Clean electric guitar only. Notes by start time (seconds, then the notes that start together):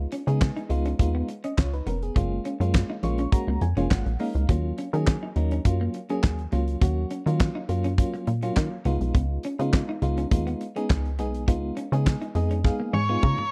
0.12 C#4
0.28 muted clean electric guitar stroke
0.57 D#4
0.70 muted clean electric guitar stroke
0.86 C#4
1.15 B3
1.29 muted clean electric guitar stroke
1.44 C#4
1.87 B3
2.16 A#3
2.45 C#4
2.60 muted clean electric guitar stroke
2.90 D#4
3.04 muted clean electric guitar stroke
3.19 C#4
3.48 A#3
3.62 muted clean electric guitar stroke
3.77 C#4
4.20 A#3
4.49 A#3
4.78 C#4
4.94 muted clean electric guitar stroke
5.23 D#4
5.36 muted clean electric guitar stroke
5.52 C#4
5.81 A#3
5.95 muted clean electric guitar stroke
6.10 C#4
6.53 A#3
6.82 A#3
7.11 C#4
7.26 muted clean electric guitar stroke
7.55 D#4
7.69 muted clean electric guitar stroke
7.84 C#4
8.14 A#3
8.27 muted clean electric guitar stroke
8.43 C#4
8.85 B3
9.15 B3
9.45 C#4
9.60 muted clean electric guitar stroke
9.89 D#4
10.03 muted clean electric guitar stroke
10.18 C#4
10.47 B3
10.61 muted clean electric guitar stroke
10.76 C#4
11.19 B3
11.48 B3
11.77 C#4
11.93 muted clean electric guitar stroke
12.22 D#4
12.36 muted clean electric guitar stroke
12.51 C#4
12.80 A#3
12.93 muted clean electric guitar stroke
13.09 B3